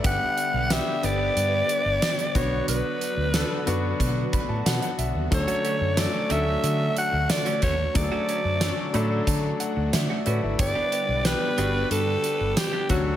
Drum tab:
HH |x-x-x-x-x-x-xxx-|x-x-x-x-x-x-xxx-|xxx-x-x-x-x-xxx-|x-x-x-x-x-x-x-x-|
TB |----x-------x---|----x-------x---|----x-------x---|----x-------x---|
SD |----o-------o---|----o-------o---|----o-------o---|----o-------o---|
BD |o-------------o-|--------o-o-----|o-------------o-|o-------o-------|

HH |x-x-x-x-x-x-x-x-|
TB |----x-------x---|
SD |----o-------o---|
BD |o-------------o-|